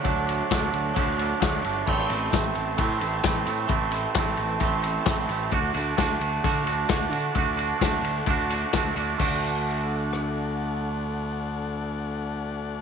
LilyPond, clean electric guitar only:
\new Staff \with { instrumentName = "Clean electric guitar" } { \time 4/4 \key d \mixolydian \tempo 4 = 131 <fis a d'>8 <a d'>8 <fis a d'>4 <fis a d'>8 <a d'>8 <fis a d'>8 <a d'>8 | <e a c'>8 <a c'>8 <e a c'>4 <e a c'>8 <a c'>8 <e a c'>8 <a c'>8 | <e a c'>8 <a c'>8 <e a c'>4 <e a c'>8 <a c'>8 <e a c'>8 <a c'>8 | <a d' fis'>8 <d' fis'>8 <a d' fis'>4 <a d' fis'>8 <d' fis'>8 <a d' fis'>8 <d' fis'>8 |
<a d' fis'>8 <d' fis'>8 <a d' fis'>4 <a d' fis'>8 <d' fis'>8 <a d' fis'>8 <d' fis'>8 | <a d' fis'>1~ | <a d' fis'>1 | }